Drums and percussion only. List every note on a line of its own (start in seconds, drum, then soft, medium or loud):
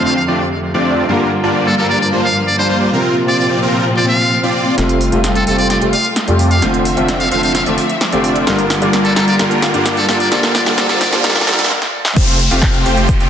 4.78 snare soft
4.78 closed hi-hat medium
4.89 closed hi-hat soft
5.01 open hi-hat loud
5.12 closed hi-hat soft
5.24 snare soft
5.24 closed hi-hat medium
5.35 closed hi-hat soft
5.47 open hi-hat loud
5.58 closed hi-hat soft
5.70 snare medium
5.70 closed hi-hat medium
5.82 closed hi-hat soft
5.93 open hi-hat loud
6.05 closed hi-hat soft
6.16 snare medium
6.16 closed hi-hat medium
6.28 closed hi-hat soft
6.39 open hi-hat loud
6.51 closed hi-hat soft
6.62 snare medium
6.62 closed hi-hat medium
6.74 closed hi-hat soft
6.85 open hi-hat loud
6.97 closed hi-hat soft
7.08 snare medium
7.08 closed hi-hat loud
7.20 closed hi-hat soft
7.32 open hi-hat loud
7.43 closed hi-hat soft
7.55 snare medium
7.55 closed hi-hat medium
7.66 closed hi-hat soft
7.78 open hi-hat loud
7.89 closed hi-hat soft
8.01 snare medium
8.01 closed hi-hat medium
8.12 closed hi-hat soft
8.24 open hi-hat loud
8.36 closed hi-hat soft
8.47 snare medium
8.47 closed hi-hat medium
8.59 closed hi-hat soft
8.70 snare medium
8.70 open hi-hat loud
8.82 closed hi-hat soft
8.93 snare medium
8.93 closed hi-hat medium
9.05 closed hi-hat soft
9.16 snare medium
9.16 open hi-hat loud
9.28 closed hi-hat soft
9.39 snare medium
9.39 closed hi-hat medium
9.51 closed hi-hat soft
9.62 snare medium
9.62 open hi-hat loud
9.74 closed hi-hat soft
9.86 snare medium
9.86 closed hi-hat medium
9.97 closed hi-hat soft
10.09 snare medium
10.09 open hi-hat loud
10.20 closed hi-hat soft
10.32 snare medium
10.32 closed hi-hat medium
10.43 snare medium
10.43 closed hi-hat soft
10.55 snare medium
10.55 open hi-hat loud
10.66 snare medium
10.66 closed hi-hat soft
10.78 snare loud
10.78 closed hi-hat medium
10.89 snare medium
10.89 closed hi-hat soft
11.01 snare loud
11.01 open hi-hat loud
11.13 snare medium
11.13 closed hi-hat soft
11.24 snare loud
11.24 closed hi-hat medium
11.30 snare medium
11.36 snare medium
11.36 closed hi-hat soft
11.41 snare medium
11.47 snare loud
11.47 open hi-hat loud
11.53 snare loud
11.59 snare medium
11.59 closed hi-hat soft
11.64 snare medium
11.70 snare medium
11.82 snare medium
12.05 snare medium
12.16 kick loud
12.16 closed hi-hat loud
12.16 crash loud
12.28 closed hi-hat soft
12.39 open hi-hat loud
12.51 closed hi-hat soft
12.63 kick loud
12.63 clap loud
12.63 closed hi-hat loud
12.74 closed hi-hat soft
12.86 open hi-hat medium
12.97 closed hi-hat soft
13.09 kick loud
13.09 closed hi-hat medium
13.20 closed hi-hat soft